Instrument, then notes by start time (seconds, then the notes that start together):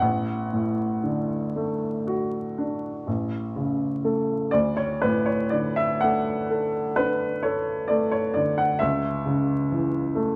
grand piano
0.00 A1 F#5
0.53 A2
1.03 D3
1.56 A3
2.07 F#4
2.58 D4
3.07 A1
3.56 C#3
4.04 A3 A4
4.51 D2 D5
4.77 C#5
5.01 A2 B4
5.26 C#5
5.50 D3 D5
5.76 E5
6.01 A3 F#5
6.51 A4
6.96 D4 B4
7.43 A4 C#5
7.88 A3 D5
8.11 C#5
8.34 D3 D5
8.58 F#5
8.79 C#2 E5
9.26 C#3
9.72 E3
10.15 A3